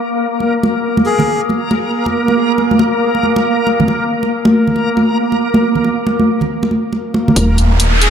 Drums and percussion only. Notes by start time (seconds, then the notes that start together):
0.40 muted conga
0.63 muted conga
0.97 muted conga, high conga
1.19 muted conga, low conga
1.49 muted conga, high conga
1.71 muted conga
2.06 muted conga, high conga
2.28 muted conga
2.58 muted conga
2.71 high conga
2.79 muted conga
3.15 muted conga
3.23 high conga
3.36 muted conga
3.67 muted conga
3.80 high conga, low conga
3.88 muted conga
4.23 muted conga
4.45 muted conga, high conga
4.67 low conga
4.76 muted conga
4.97 muted conga, high conga
5.32 muted conga
5.54 muted conga, high conga
5.75 low conga
5.84 muted conga
6.07 muted conga
6.20 high conga
6.41 muted conga, low conga
6.63 muted conga
6.71 high conga
6.93 muted conga
7.14 muted conga
7.28 high conga, low conga
7.36 kick, closed hi-hat
7.58 closed hi-hat
7.80 closed hi-hat
8.01 closed hi-hat